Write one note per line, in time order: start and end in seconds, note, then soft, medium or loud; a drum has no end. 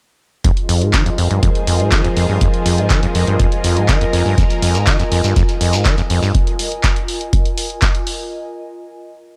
0.44 0.51 F2 loud
0.44 6.31 F3 medium
0.44 6.31 F4 medium
0.44 8.31 F4 medium
0.44 6.31 G#4 medium
0.44 3.37 C5 medium
0.44 kick loud
0.44 closed hi-hat medium
0.57 8.31 D#5 medium
0.57 closed hi-hat soft
0.69 0.83 F2 medium
0.69 open hi-hat loud
0.74 8.31 A#4 medium
0.82 0.95 G#2 medium
0.82 closed hi-hat soft
0.93 1.04 D#3 loud
0.93 kick loud
0.93 clap loud
0.93 closed hi-hat medium
1.06 1.10 F2 medium
1.06 8.31 G#5 medium
1.06 closed hi-hat soft
1.18 1.29 F2 medium
1.18 open hi-hat medium
1.31 1.41 G2 medium
1.31 closed hi-hat soft
1.43 1.50 F2 loud
1.43 kick loud
1.43 closed hi-hat medium
1.55 closed hi-hat soft
1.67 1.81 F2 medium
1.67 open hi-hat loud
1.80 1.94 G#2 medium
1.80 closed hi-hat soft
1.92 2.02 D#3 medium
1.92 kick loud
1.92 clap loud
1.92 closed hi-hat medium
2.04 2.08 F2 medium
2.04 closed hi-hat soft
2.17 2.27 F2 medium
2.17 open hi-hat medium
2.29 2.39 G2 medium
2.41 2.48 F2 loud
2.41 kick loud
2.41 closed hi-hat medium
2.54 closed hi-hat soft
2.66 2.80 F2 medium
2.66 open hi-hat loud
2.78 2.92 G#2 medium
2.78 closed hi-hat soft
2.90 3.01 D#3 loud
2.90 kick loud
2.90 clap loud
2.90 closed hi-hat loud
3.03 3.07 F2 medium
3.03 closed hi-hat soft
3.15 3.25 F2 medium
3.15 open hi-hat medium
3.27 3.37 G2 medium
3.27 closed hi-hat soft
3.40 3.46 F2 loud
3.40 6.32 A#4 medium
3.40 kick loud
3.40 closed hi-hat medium
3.52 closed hi-hat soft
3.64 3.78 F2 medium
3.64 open hi-hat loud
3.77 3.90 G#2 medium
3.77 closed hi-hat soft
3.88 3.99 D#3 loud
3.88 kick loud
3.88 clap loud
3.88 closed hi-hat medium
4.01 4.05 F2 medium
4.01 closed hi-hat soft
4.13 4.24 F2 medium
4.13 open hi-hat medium
4.26 4.36 G2 medium
4.38 4.45 F2 loud
4.38 kick loud
4.38 closed hi-hat medium
4.38 shekere medium
4.50 closed hi-hat soft
4.50 shekere soft
4.62 4.76 F2 medium
4.62 open hi-hat loud
4.75 4.89 G#2 medium
4.75 closed hi-hat soft
4.75 shekere medium
4.87 4.97 D#3 loud
4.87 kick loud
4.87 clap loud
4.87 closed hi-hat medium
4.87 shekere medium
4.99 5.04 F2 medium
4.99 closed hi-hat soft
4.99 shekere soft
5.12 5.22 F2 medium
5.12 open hi-hat loud
5.24 5.34 G2 medium
5.24 closed hi-hat soft
5.24 shekere medium
5.36 5.43 F2 loud
5.36 kick loud
5.36 closed hi-hat medium
5.36 shekere medium
5.49 closed hi-hat soft
5.49 shekere soft
5.61 5.75 F2 medium
5.61 open hi-hat loud
5.73 5.87 G#2 medium
5.73 closed hi-hat soft
5.73 shekere medium
5.85 5.96 D#3 loud
5.85 kick loud
5.85 clap loud
5.85 closed hi-hat medium
5.85 shekere medium
5.98 6.02 F2 medium
5.98 closed hi-hat soft
5.98 shekere soft
6.10 6.20 F2 medium
6.10 open hi-hat medium
6.22 6.33 G2 medium
6.22 shekere medium
6.35 kick loud
6.35 closed hi-hat medium
6.47 closed hi-hat soft
6.59 open hi-hat loud
6.72 closed hi-hat soft
6.83 kick loud
6.83 clap loud
6.83 closed hi-hat medium
6.96 closed hi-hat soft
7.08 open hi-hat medium
7.21 closed hi-hat soft
7.33 kick loud
7.33 closed hi-hat medium
7.45 closed hi-hat soft
7.58 open hi-hat loud
7.70 closed hi-hat soft
7.82 kick loud
7.82 clap loud
7.82 closed hi-hat medium
7.95 closed hi-hat soft
8.07 open hi-hat medium